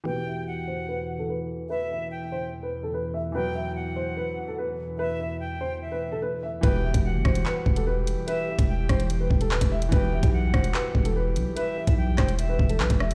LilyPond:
<<
  \new Staff \with { instrumentName = "Flute" } { \time 4/4 \key e \minor \tempo 4 = 146 g''4 fis''2 r4 | e''4 g''4 r2 | g''4 fis''2 r4 | e''4 g''4 e''4 r4 |
g''4 fis''2 r4 | e''4 g''4 r2 | g''4 fis''2 r4 | e''4 g''4 e''4 r4 | }
  \new Staff \with { instrumentName = "Grand piano" } { \time 4/4 \key e \minor b'8 e''8 r8 c''8 b'8. a'16 b'4 | b'8 e''8 r8 c''8. b'8 a'16 b'8 e''8 | b'8 e''8 r8 c''8 b'8. a'16 b'4 | b'8 e''8 r8 c''8. b'8 a'16 b'8 e''8 |
b'8 e''8 r8 c''8 b'8. a'16 b'4 | b'8 e''8 r8 c''8. b'8 a'16 b'8 e''8 | b'8 e''8 r8 c''8 b'8. a'16 b'4 | b'8 e''8 r8 c''8. b'8 a'16 b'8 e''8 | }
  \new Staff \with { instrumentName = "Analog synth pad" } { \clef bass \time 4/4 \key e \minor <e, b, e>1~ | <e, b, e>1~ | <e, b, e>1~ | <e, b, e>1 |
<e g g'>1~ | <e g g'>1~ | <e g g'>1~ | <e g g'>1 | }
  \new Staff \with { instrumentName = "Grand piano" } { \clef bass \time 4/4 \key e \minor <b, e g'>1~ | <b, e g'>1 | <b, e fis>1~ | <b, e fis>1 |
<b, e g'>1~ | <b, e g'>1 | <b, e g'>1~ | <b, e g'>1 | }
  \new Staff \with { instrumentName = "808-style bass" } { \clef bass \time 4/4 \key e \minor r1 | r1 | r1 | r1 |
e,,8. e,,8 fis,,16 e,,8 r8 e,,4~ e,,16 r16 | r8. e,,8. e,,4 e,,8 dis,,16 e,,8. | e,,8. b,,8. e,,8 r8 e,,4 b,,16 r16 | r8. b,,8. e,,4 e,,8 b,,16 e,,8. | }
  \new DrumStaff \with { instrumentName = "Drums" } \drummode { \time 4/4 r4 r4 r4 r4 | r4 r4 r4 r4 | r4 r4 r4 r4 | r4 r4 r4 r4 |
<hh bd>8. <hh bd>16 r8 <hh bd ss>16 hh16 hc8 bd16 hh16 r8 hh8 | hh8. <hh bd>16 r8 <hh bd ss>16 hh16 hh8 bd16 hh16 hc16 <hh bd>8 hh16 | <hh bd>8. <hh bd>16 r8 <hh bd ss>16 hh16 hc8 bd16 hh16 r8 hh8 | hh8. <hh bd>16 r8 <hc hh bd ss>16 hh16 hh8 bd16 hh16 hc16 <hh bd>16 ss16 hh16 | }
>>